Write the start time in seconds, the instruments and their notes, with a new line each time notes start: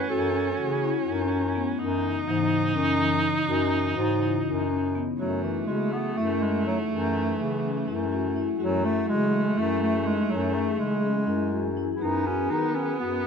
Already playing: ambient pad E3 A3 F#4, viola C#4
0.09 bass clarinet F#2, marimba F#4, clarinet A4
0.58 bass clarinet C#3, marimba F#4
0.82 marimba E4
1.06 bass clarinet F#2, marimba D#4
1.31 marimba C#4
1.55 marimba B3
1.79 bass clarinet F#2, ambient pad C#3 D#4, viola D#4, marimba D#4
2.27 bass clarinet G#2, marimba E3
2.75 bass clarinet F#2, marimba C#4
3.00 marimba E3
3.48 bass clarinet F#2, marimba F#4
3.96 bass clarinet G#2, marimba F#4
4.21 marimba E4
4.45 bass clarinet F#2, marimba D#4
4.70 marimba C#4
4.95 marimba B3
5.19 bass clarinet F#2, ambient pad E3 F#3 G#4, clarinet F#3, viola A3, marimba F#4
5.43 clarinet E3, marimba E4
5.66 bass clarinet C#3, clarinet G#3, marimba F#4
5.92 clarinet B3
6.17 bass clarinet F#2, clarinet A3, marimba E4
6.42 clarinet G#3
6.66 clarinet F#3, marimba D#4
6.91 bass clarinet F#2, clarinet E3
7.15 marimba D#4
7.40 bass clarinet C#3
7.64 marimba C#4
7.88 bass clarinet F#2, marimba E4
8.12 marimba F#4
8.36 marimba E4
8.60 bass clarinet F#2, clarinet F#3, viola A3, marimba F#4
8.85 clarinet A3, marimba E4
9.08 bass clarinet C#3, clarinet G#3, marimba F#4
9.58 bass clarinet F#2, clarinet A3, marimba E4
9.82 clarinet A3
10.06 clarinet G#3, marimba D#4
10.30 bass clarinet F#2, clarinet F#3
10.54 clarinet A3, marimba D#4
10.79 bass clarinet C#3, clarinet G#3
11.03 marimba C#4
11.27 bass clarinet F#2, marimba E4
11.51 marimba F#4
11.77 marimba E4
11.95 clarinet E4
12.01 bass clarinet F#2, ambient pad F#3 B3, viola B3, clarinet D#4, marimba G#4
12.26 clarinet C#4, marimba F#4
12.50 bass clarinet D#3, clarinet D#4, marimba G#4
12.75 clarinet C#4
13.00 bass clarinet F#2, clarinet B3, marimba F#4